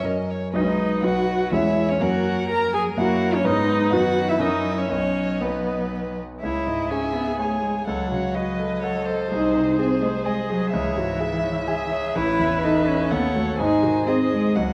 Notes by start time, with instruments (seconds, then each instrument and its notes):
Already playing: cello F#3
0.03 grand piano F#2 F#3 C#4 A#4, violin D#5
0.30 violin C#5
0.53 grand piano B1 F#3 D#4 B4, cello G#3, viola D#4, violin B4 D#5
0.62 viola C#4
0.68 viola D#4
1.02 grand piano B1 F#3 D#4 B4, cello F#3, viola F#4, violin F#5
1.51 grand piano E2 G#3 C#4 C#5, cello G#3, viola E4, violin C#5 E5
1.89 viola C#4, violin C#5
2.00 grand piano F#2 A#3 C#4 C#5, cello F#3, viola F#4, violin A#4 F#5
2.50 viola A#4, violin A#5
2.74 viola G#4, violin G#5
2.97 grand piano F#2 A#3 E4 C#5, cello A#3, viola F#4, violin F#5
3.34 viola C#4, violin C#5
3.44 grand piano G#2 B3 D#4 B4, cello G#3, viola D#4, violin B4 D#5
3.91 grand piano F#2 B3 D#4 B4, cello D#3, viola F#4, violin F#5
4.29 viola E4, violin E5
4.39 grand piano F#2 C#4 E4 A#4, cello F#3, viola D#4, violin D#5 E5
4.78 viola C#4, violin C#5
4.88 grand piano B1 B3 D#4 B4, cello F#3, viola C#4, violin C#5 D#5
5.40 grand piano B1 B3 D#4 B4, viola B3, violin B4
6.41 grand piano C#2, cello E4, viola G#4, violin C#5 E5
6.67 grand piano G#2, violin D#5
6.90 cello C#4, grand piano G#4, violin E5 G#5
7.14 cello B3, grand piano E5
7.38 cello A3, violin C#5, grand piano G#5
7.62 cello G#3, grand piano G#4
7.86 grand piano C#2, cello F#3, viola A4, violin C#5 F#5
8.11 grand piano C#3, viola F#4
8.35 grand piano F#4, viola B4, violin D#5
8.59 grand piano A4
8.82 viola A4, violin C#5, grand piano F#5
9.06 grand piano A4, violin C5
9.30 grand piano C2, cello D#4, viola G#4, violin C5
9.55 grand piano C3
9.78 cello C4, viola G#4, grand piano G#4, violin C5
10.01 cello A3, grand piano D#5
10.25 cello G#3, violin D#5, grand piano G#5
10.49 cello F#3, grand piano G#4
10.72 grand piano C#2, cello E3, viola G#4, violin C#5 E5
10.97 grand piano G#2, viola F#4
11.19 viola E4, grand piano G#4, violin E5
11.44 grand piano C#5
11.67 viola G#4, violin E5, grand piano G#5
11.91 viola G#4, grand piano C#5
12.15 grand piano A1, cello E4, viola B4, violin C#5 E5
12.39 grand piano E2
12.63 cello D#4, grand piano A4, violin D#5
12.87 cello C#4, grand piano C#5
13.11 grand piano D#2, cello B3, viola A4, violin C#5 F#5
13.35 cello A3, grand piano F#4 C#5
13.58 grand piano G#2, cello D#4, viola G#4, violin C5 G#5
13.83 grand piano D#3, viola F#4
14.07 cello C4, viola G#4, grand piano G#4, violin D#5
14.31 cello G#3, grand piano D#5
14.55 grand piano C#2, cello F#3, viola F#4, violin D#5 F#5